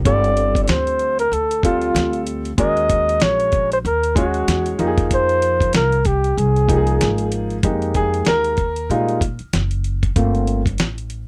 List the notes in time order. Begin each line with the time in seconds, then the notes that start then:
0.05 G1 G3 C4 F4 A4 D5, kick, closed hi-hat
0.24 closed hi-hat
0.37 closed hi-hat
0.55 kick, closed hi-hat
0.64 D5, closed hi-hat
0.68 D2 C5, snare
0.87 closed hi-hat
0.99 closed hi-hat
1.19 A#4, closed hi-hat
1.31 D2 A4, closed hi-hat
1.51 closed hi-hat
1.63 G3 C4 F4 A4, kick, closed hi-hat
1.82 closed hi-hat
1.94 D2, snare, closed hi-hat
2.13 closed hi-hat
2.27 closed hi-hat
2.45 closed hi-hat
2.58 D#2 G#3 C#4 F#4 A#4 D#5, kick, closed hi-hat
2.77 closed hi-hat
2.89 kick, closed hi-hat
3.09 closed hi-hat
3.20 A#1 C#5, snare, closed hi-hat
3.40 closed hi-hat
3.52 kick, closed hi-hat
3.72 C5, closed hi-hat
3.85 D#2 A#4, closed hi-hat
4.03 closed hi-hat
4.15 G#3 C#4 F#4 C#5, kick, closed hi-hat
4.34 closed hi-hat
4.48 E2, snare, closed hi-hat
4.66 closed hi-hat
4.79 F2 F3 A#3 D#4 G4, closed hi-hat
4.87 G#4
4.98 kick, closed hi-hat
5.11 C5, kick, closed hi-hat
5.29 closed hi-hat
5.42 closed hi-hat
5.61 kick, closed hi-hat
5.73 C2 A#4, snare, closed hi-hat
5.92 closed hi-hat
6.05 G4, kick, closed hi-hat
6.24 closed hi-hat
6.37 C2 G#4, closed hi-hat
6.56 closed hi-hat
6.68 F3 A#3 D#4 G4, kick, closed hi-hat
6.76 G#4
6.87 closed hi-hat
7.01 G#1, snare, closed hi-hat
7.18 closed hi-hat
7.32 closed hi-hat
7.50 closed hi-hat
7.63 F2 G#3 A#3 D#4 G4, kick, closed hi-hat
7.82 closed hi-hat
7.94 G#4, kick, closed hi-hat
8.14 closed hi-hat
8.25 D#2 A#4, snare, closed hi-hat
8.44 closed hi-hat
8.57 kick, closed hi-hat
8.76 closed hi-hat
8.90 A#2 G3 G#3 A#3 D#4 F4, closed hi-hat
9.09 closed hi-hat
9.21 kick, closed hi-hat
9.39 muted upright bass stroke, closed hi-hat
9.53 F#1, snare, closed hi-hat
9.71 closed hi-hat
9.84 closed hi-hat
10.03 kick, closed hi-hat
10.16 G1 A3 A#3 C4 F4, kick, closed hi-hat
10.35 closed hi-hat
10.47 closed hi-hat
10.66 kick, closed hi-hat
10.78 A1, snare, closed hi-hat
10.98 closed hi-hat
11.10 closed hi-hat